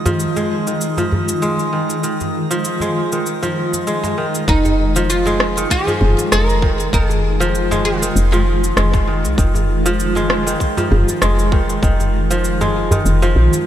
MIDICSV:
0, 0, Header, 1, 8, 480
1, 0, Start_track
1, 0, Key_signature, -4, "minor"
1, 0, Tempo, 612245
1, 1593, Time_signature, 4, 2, 24, 8
1, 10713, End_track
2, 0, Start_track
2, 0, Title_t, "Synth texture"
2, 0, Program_c, 0, 99
2, 0, Note_on_c, 0, 75, 72
2, 3524, Note_off_c, 0, 75, 0
2, 10713, End_track
3, 0, Start_track
3, 0, Title_t, "Oud"
3, 0, Program_c, 1, 24
3, 3518, Note_on_c, 1, 63, 93
3, 3964, Note_off_c, 1, 63, 0
3, 3996, Note_on_c, 1, 65, 90
3, 4474, Note_off_c, 1, 65, 0
3, 4477, Note_on_c, 1, 68, 111
3, 4953, Note_off_c, 1, 68, 0
3, 4956, Note_on_c, 1, 70, 112
3, 5403, Note_off_c, 1, 70, 0
3, 5439, Note_on_c, 1, 68, 99
3, 6151, Note_off_c, 1, 68, 0
3, 6154, Note_on_c, 1, 65, 89
3, 7082, Note_off_c, 1, 65, 0
3, 10713, End_track
4, 0, Start_track
4, 0, Title_t, "Ambient pad"
4, 0, Program_c, 2, 92
4, 0, Note_on_c, 2, 51, 77
4, 0, Note_on_c, 2, 56, 68
4, 0, Note_on_c, 2, 65, 79
4, 3484, Note_off_c, 2, 51, 0
4, 3484, Note_off_c, 2, 65, 0
4, 3485, Note_off_c, 2, 56, 0
4, 3516, Note_on_c, 2, 56, 75
4, 3517, Note_on_c, 2, 65, 93
4, 3519, Note_on_c, 2, 51, 79
4, 10713, Note_off_c, 2, 51, 0
4, 10713, Note_off_c, 2, 56, 0
4, 10713, Note_off_c, 2, 65, 0
4, 10713, End_track
5, 0, Start_track
5, 0, Title_t, "Kora"
5, 0, Program_c, 3, 46
5, 0, Note_on_c, 3, 51, 68
5, 43, Note_on_c, 3, 53, 91
5, 284, Note_on_c, 3, 56, 82
5, 515, Note_off_c, 3, 51, 0
5, 524, Note_on_c, 3, 51, 64
5, 552, Note_off_c, 3, 53, 0
5, 552, Note_off_c, 3, 56, 0
5, 767, Note_on_c, 3, 53, 89
5, 1114, Note_on_c, 3, 56, 89
5, 1343, Note_off_c, 3, 51, 0
5, 1353, Note_on_c, 3, 51, 68
5, 1393, Note_off_c, 3, 53, 0
5, 1393, Note_off_c, 3, 56, 0
5, 1584, Note_off_c, 3, 51, 0
5, 1594, Note_on_c, 3, 51, 70
5, 1965, Note_on_c, 3, 53, 93
5, 2206, Note_on_c, 3, 56, 83
5, 2438, Note_off_c, 3, 51, 0
5, 2447, Note_on_c, 3, 51, 62
5, 2472, Note_off_c, 3, 56, 0
5, 2473, Note_off_c, 3, 53, 0
5, 2686, Note_on_c, 3, 53, 89
5, 3034, Note_on_c, 3, 56, 81
5, 3265, Note_off_c, 3, 51, 0
5, 3274, Note_on_c, 3, 51, 67
5, 3312, Note_off_c, 3, 53, 0
5, 3312, Note_off_c, 3, 56, 0
5, 3507, Note_off_c, 3, 51, 0
5, 3516, Note_on_c, 3, 51, 74
5, 3888, Note_on_c, 3, 53, 103
5, 4127, Note_on_c, 3, 56, 96
5, 4357, Note_off_c, 3, 51, 0
5, 4367, Note_on_c, 3, 51, 72
5, 4393, Note_off_c, 3, 53, 0
5, 4393, Note_off_c, 3, 56, 0
5, 4604, Note_on_c, 3, 53, 99
5, 4952, Note_on_c, 3, 56, 91
5, 5184, Note_off_c, 3, 51, 0
5, 5193, Note_on_c, 3, 51, 74
5, 5232, Note_off_c, 3, 53, 0
5, 5232, Note_off_c, 3, 56, 0
5, 5425, Note_off_c, 3, 51, 0
5, 5435, Note_on_c, 3, 51, 77
5, 5804, Note_on_c, 3, 53, 105
5, 6046, Note_on_c, 3, 56, 94
5, 6278, Note_off_c, 3, 51, 0
5, 6288, Note_on_c, 3, 51, 72
5, 6313, Note_off_c, 3, 53, 0
5, 6313, Note_off_c, 3, 56, 0
5, 6528, Note_on_c, 3, 53, 100
5, 6876, Note_on_c, 3, 56, 90
5, 7105, Note_off_c, 3, 51, 0
5, 7114, Note_on_c, 3, 51, 73
5, 7153, Note_off_c, 3, 53, 0
5, 7153, Note_off_c, 3, 56, 0
5, 7345, Note_off_c, 3, 51, 0
5, 7355, Note_on_c, 3, 51, 78
5, 7727, Note_on_c, 3, 53, 101
5, 7966, Note_on_c, 3, 56, 90
5, 8195, Note_off_c, 3, 51, 0
5, 8205, Note_on_c, 3, 51, 73
5, 8232, Note_off_c, 3, 56, 0
5, 8233, Note_off_c, 3, 53, 0
5, 8446, Note_on_c, 3, 53, 96
5, 8796, Note_on_c, 3, 56, 98
5, 9027, Note_off_c, 3, 51, 0
5, 9036, Note_on_c, 3, 51, 77
5, 9072, Note_off_c, 3, 53, 0
5, 9072, Note_off_c, 3, 56, 0
5, 9264, Note_off_c, 3, 51, 0
5, 9274, Note_on_c, 3, 51, 79
5, 9647, Note_on_c, 3, 53, 97
5, 9886, Note_on_c, 3, 56, 90
5, 10117, Note_off_c, 3, 51, 0
5, 10127, Note_on_c, 3, 51, 76
5, 10152, Note_off_c, 3, 53, 0
5, 10152, Note_off_c, 3, 56, 0
5, 10367, Note_on_c, 3, 53, 100
5, 10713, Note_off_c, 3, 51, 0
5, 10713, Note_off_c, 3, 53, 0
5, 10713, End_track
6, 0, Start_track
6, 0, Title_t, "FM bass"
6, 0, Program_c, 4, 39
6, 3511, Note_on_c, 4, 29, 95
6, 4431, Note_off_c, 4, 29, 0
6, 4714, Note_on_c, 4, 29, 104
6, 4814, Note_off_c, 4, 29, 0
6, 4956, Note_on_c, 4, 29, 80
6, 5393, Note_off_c, 4, 29, 0
6, 5433, Note_on_c, 4, 29, 94
6, 6352, Note_off_c, 4, 29, 0
6, 6395, Note_on_c, 4, 29, 92
6, 6833, Note_off_c, 4, 29, 0
6, 6874, Note_on_c, 4, 29, 88
6, 7249, Note_on_c, 4, 36, 78
6, 7261, Note_off_c, 4, 29, 0
6, 7329, Note_off_c, 4, 36, 0
6, 7352, Note_on_c, 4, 29, 93
6, 8271, Note_off_c, 4, 29, 0
6, 8554, Note_on_c, 4, 29, 98
6, 8654, Note_off_c, 4, 29, 0
6, 8795, Note_on_c, 4, 29, 79
6, 9233, Note_off_c, 4, 29, 0
6, 9271, Note_on_c, 4, 29, 92
6, 10191, Note_off_c, 4, 29, 0
6, 10234, Note_on_c, 4, 29, 87
6, 10468, Note_off_c, 4, 29, 0
6, 10473, Note_on_c, 4, 34, 91
6, 10573, Note_off_c, 4, 34, 0
6, 10713, End_track
7, 0, Start_track
7, 0, Title_t, "Djembe"
7, 45, Note_on_c, 9, 64, 77
7, 123, Note_off_c, 9, 64, 0
7, 286, Note_on_c, 9, 62, 46
7, 364, Note_off_c, 9, 62, 0
7, 763, Note_on_c, 9, 63, 67
7, 842, Note_off_c, 9, 63, 0
7, 873, Note_on_c, 9, 62, 30
7, 881, Note_on_c, 9, 64, 66
7, 951, Note_off_c, 9, 62, 0
7, 959, Note_off_c, 9, 64, 0
7, 1733, Note_on_c, 9, 63, 50
7, 1811, Note_off_c, 9, 63, 0
7, 2195, Note_on_c, 9, 63, 48
7, 2208, Note_on_c, 9, 62, 42
7, 2273, Note_off_c, 9, 63, 0
7, 2286, Note_off_c, 9, 62, 0
7, 2687, Note_on_c, 9, 62, 46
7, 2766, Note_off_c, 9, 62, 0
7, 2926, Note_on_c, 9, 63, 30
7, 3004, Note_off_c, 9, 63, 0
7, 3164, Note_on_c, 9, 62, 58
7, 3165, Note_on_c, 9, 63, 30
7, 3242, Note_off_c, 9, 62, 0
7, 3244, Note_off_c, 9, 63, 0
7, 3647, Note_on_c, 9, 63, 68
7, 3725, Note_off_c, 9, 63, 0
7, 4120, Note_on_c, 9, 62, 54
7, 4199, Note_off_c, 9, 62, 0
7, 4604, Note_on_c, 9, 63, 72
7, 4683, Note_off_c, 9, 63, 0
7, 4710, Note_on_c, 9, 62, 38
7, 4712, Note_on_c, 9, 64, 79
7, 4789, Note_off_c, 9, 62, 0
7, 4790, Note_off_c, 9, 64, 0
7, 5563, Note_on_c, 9, 63, 63
7, 5642, Note_off_c, 9, 63, 0
7, 6047, Note_on_c, 9, 63, 60
7, 6050, Note_on_c, 9, 62, 55
7, 6126, Note_off_c, 9, 63, 0
7, 6128, Note_off_c, 9, 62, 0
7, 6524, Note_on_c, 9, 62, 68
7, 6603, Note_off_c, 9, 62, 0
7, 7006, Note_on_c, 9, 63, 40
7, 7008, Note_on_c, 9, 62, 63
7, 7085, Note_off_c, 9, 63, 0
7, 7086, Note_off_c, 9, 62, 0
7, 7483, Note_on_c, 9, 63, 68
7, 7562, Note_off_c, 9, 63, 0
7, 7960, Note_on_c, 9, 62, 45
7, 8038, Note_off_c, 9, 62, 0
7, 8448, Note_on_c, 9, 63, 85
7, 8526, Note_off_c, 9, 63, 0
7, 8557, Note_on_c, 9, 62, 38
7, 8559, Note_on_c, 9, 64, 101
7, 8636, Note_off_c, 9, 62, 0
7, 8638, Note_off_c, 9, 64, 0
7, 9408, Note_on_c, 9, 63, 57
7, 9486, Note_off_c, 9, 63, 0
7, 9887, Note_on_c, 9, 63, 62
7, 9888, Note_on_c, 9, 62, 47
7, 9966, Note_off_c, 9, 62, 0
7, 9966, Note_off_c, 9, 63, 0
7, 10123, Note_on_c, 9, 64, 104
7, 10201, Note_off_c, 9, 64, 0
7, 10367, Note_on_c, 9, 62, 57
7, 10445, Note_off_c, 9, 62, 0
7, 10601, Note_on_c, 9, 63, 36
7, 10679, Note_off_c, 9, 63, 0
7, 10713, End_track
8, 0, Start_track
8, 0, Title_t, "Drums"
8, 46, Note_on_c, 9, 82, 62
8, 124, Note_off_c, 9, 82, 0
8, 154, Note_on_c, 9, 82, 50
8, 232, Note_off_c, 9, 82, 0
8, 286, Note_on_c, 9, 82, 29
8, 364, Note_off_c, 9, 82, 0
8, 526, Note_on_c, 9, 82, 63
8, 604, Note_off_c, 9, 82, 0
8, 635, Note_on_c, 9, 82, 52
8, 713, Note_off_c, 9, 82, 0
8, 767, Note_on_c, 9, 82, 32
8, 846, Note_off_c, 9, 82, 0
8, 1007, Note_on_c, 9, 82, 63
8, 1086, Note_off_c, 9, 82, 0
8, 1115, Note_on_c, 9, 82, 50
8, 1194, Note_off_c, 9, 82, 0
8, 1248, Note_on_c, 9, 82, 32
8, 1326, Note_off_c, 9, 82, 0
8, 1488, Note_on_c, 9, 82, 65
8, 1566, Note_off_c, 9, 82, 0
8, 1596, Note_on_c, 9, 82, 53
8, 1674, Note_off_c, 9, 82, 0
8, 1728, Note_on_c, 9, 82, 33
8, 1806, Note_off_c, 9, 82, 0
8, 1968, Note_on_c, 9, 82, 62
8, 2046, Note_off_c, 9, 82, 0
8, 2075, Note_on_c, 9, 82, 53
8, 2153, Note_off_c, 9, 82, 0
8, 2208, Note_on_c, 9, 82, 33
8, 2287, Note_off_c, 9, 82, 0
8, 2448, Note_on_c, 9, 82, 63
8, 2527, Note_off_c, 9, 82, 0
8, 2557, Note_on_c, 9, 82, 55
8, 2635, Note_off_c, 9, 82, 0
8, 2688, Note_on_c, 9, 82, 30
8, 2767, Note_off_c, 9, 82, 0
8, 2929, Note_on_c, 9, 82, 66
8, 3008, Note_off_c, 9, 82, 0
8, 3036, Note_on_c, 9, 82, 49
8, 3114, Note_off_c, 9, 82, 0
8, 3170, Note_on_c, 9, 82, 31
8, 3248, Note_off_c, 9, 82, 0
8, 3407, Note_on_c, 9, 82, 62
8, 3485, Note_off_c, 9, 82, 0
8, 3511, Note_on_c, 9, 36, 116
8, 3515, Note_on_c, 9, 82, 56
8, 3590, Note_off_c, 9, 36, 0
8, 3593, Note_off_c, 9, 82, 0
8, 3647, Note_on_c, 9, 82, 33
8, 3726, Note_off_c, 9, 82, 0
8, 3889, Note_on_c, 9, 82, 66
8, 3967, Note_off_c, 9, 82, 0
8, 3997, Note_on_c, 9, 82, 58
8, 4075, Note_off_c, 9, 82, 0
8, 4130, Note_on_c, 9, 82, 34
8, 4208, Note_off_c, 9, 82, 0
8, 4234, Note_on_c, 9, 37, 82
8, 4313, Note_off_c, 9, 37, 0
8, 4371, Note_on_c, 9, 82, 72
8, 4450, Note_off_c, 9, 82, 0
8, 4472, Note_on_c, 9, 36, 61
8, 4479, Note_on_c, 9, 82, 62
8, 4551, Note_off_c, 9, 36, 0
8, 4558, Note_off_c, 9, 82, 0
8, 4611, Note_on_c, 9, 82, 34
8, 4690, Note_off_c, 9, 82, 0
8, 4851, Note_on_c, 9, 82, 70
8, 4930, Note_off_c, 9, 82, 0
8, 4955, Note_on_c, 9, 37, 79
8, 4959, Note_on_c, 9, 82, 57
8, 5034, Note_off_c, 9, 37, 0
8, 5037, Note_off_c, 9, 82, 0
8, 5092, Note_on_c, 9, 82, 32
8, 5170, Note_off_c, 9, 82, 0
8, 5193, Note_on_c, 9, 36, 102
8, 5271, Note_off_c, 9, 36, 0
8, 5332, Note_on_c, 9, 82, 68
8, 5410, Note_off_c, 9, 82, 0
8, 5433, Note_on_c, 9, 36, 116
8, 5440, Note_on_c, 9, 82, 56
8, 5512, Note_off_c, 9, 36, 0
8, 5519, Note_off_c, 9, 82, 0
8, 5571, Note_on_c, 9, 82, 35
8, 5649, Note_off_c, 9, 82, 0
8, 5812, Note_on_c, 9, 82, 68
8, 5890, Note_off_c, 9, 82, 0
8, 5919, Note_on_c, 9, 82, 59
8, 5998, Note_off_c, 9, 82, 0
8, 6051, Note_on_c, 9, 82, 33
8, 6129, Note_off_c, 9, 82, 0
8, 6292, Note_on_c, 9, 82, 71
8, 6371, Note_off_c, 9, 82, 0
8, 6400, Note_on_c, 9, 82, 59
8, 6479, Note_off_c, 9, 82, 0
8, 6533, Note_on_c, 9, 82, 34
8, 6611, Note_off_c, 9, 82, 0
8, 6772, Note_on_c, 9, 82, 68
8, 6851, Note_off_c, 9, 82, 0
8, 6875, Note_on_c, 9, 37, 84
8, 6879, Note_on_c, 9, 82, 52
8, 6954, Note_off_c, 9, 37, 0
8, 6957, Note_off_c, 9, 82, 0
8, 7005, Note_on_c, 9, 36, 102
8, 7010, Note_on_c, 9, 82, 34
8, 7083, Note_off_c, 9, 36, 0
8, 7088, Note_off_c, 9, 82, 0
8, 7250, Note_on_c, 9, 82, 70
8, 7328, Note_off_c, 9, 82, 0
8, 7353, Note_on_c, 9, 36, 120
8, 7358, Note_on_c, 9, 82, 59
8, 7431, Note_off_c, 9, 36, 0
8, 7437, Note_off_c, 9, 82, 0
8, 7490, Note_on_c, 9, 82, 37
8, 7569, Note_off_c, 9, 82, 0
8, 7729, Note_on_c, 9, 82, 76
8, 7807, Note_off_c, 9, 82, 0
8, 7838, Note_on_c, 9, 82, 57
8, 7916, Note_off_c, 9, 82, 0
8, 7970, Note_on_c, 9, 82, 34
8, 8049, Note_off_c, 9, 82, 0
8, 8074, Note_on_c, 9, 37, 80
8, 8153, Note_off_c, 9, 37, 0
8, 8210, Note_on_c, 9, 82, 76
8, 8288, Note_off_c, 9, 82, 0
8, 8312, Note_on_c, 9, 36, 69
8, 8317, Note_on_c, 9, 82, 63
8, 8391, Note_off_c, 9, 36, 0
8, 8396, Note_off_c, 9, 82, 0
8, 8450, Note_on_c, 9, 82, 37
8, 8528, Note_off_c, 9, 82, 0
8, 8690, Note_on_c, 9, 82, 73
8, 8768, Note_off_c, 9, 82, 0
8, 8794, Note_on_c, 9, 37, 80
8, 8798, Note_on_c, 9, 82, 57
8, 8873, Note_off_c, 9, 37, 0
8, 8876, Note_off_c, 9, 82, 0
8, 8930, Note_on_c, 9, 82, 36
8, 9008, Note_off_c, 9, 82, 0
8, 9032, Note_on_c, 9, 36, 119
8, 9111, Note_off_c, 9, 36, 0
8, 9169, Note_on_c, 9, 82, 71
8, 9248, Note_off_c, 9, 82, 0
8, 9272, Note_on_c, 9, 36, 117
8, 9278, Note_on_c, 9, 82, 60
8, 9350, Note_off_c, 9, 36, 0
8, 9356, Note_off_c, 9, 82, 0
8, 9410, Note_on_c, 9, 82, 34
8, 9488, Note_off_c, 9, 82, 0
8, 9649, Note_on_c, 9, 82, 71
8, 9728, Note_off_c, 9, 82, 0
8, 9756, Note_on_c, 9, 82, 59
8, 9834, Note_off_c, 9, 82, 0
8, 9888, Note_on_c, 9, 82, 33
8, 9966, Note_off_c, 9, 82, 0
8, 10128, Note_on_c, 9, 82, 72
8, 10207, Note_off_c, 9, 82, 0
8, 10236, Note_on_c, 9, 82, 60
8, 10315, Note_off_c, 9, 82, 0
8, 10368, Note_on_c, 9, 82, 34
8, 10447, Note_off_c, 9, 82, 0
8, 10608, Note_on_c, 9, 82, 69
8, 10687, Note_off_c, 9, 82, 0
8, 10713, End_track
0, 0, End_of_file